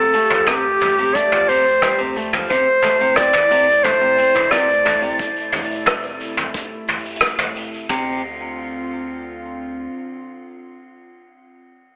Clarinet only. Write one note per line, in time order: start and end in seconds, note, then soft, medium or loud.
0.00 0.49 A4 loud
0.48 1.16 G4 loud
1.15 1.50 D5 loud
1.49 2.16 C5 loud
2.50 3.17 C5 loud
3.16 3.85 D5 loud
3.84 4.53 C5 loud
4.51 5.19 D5 loud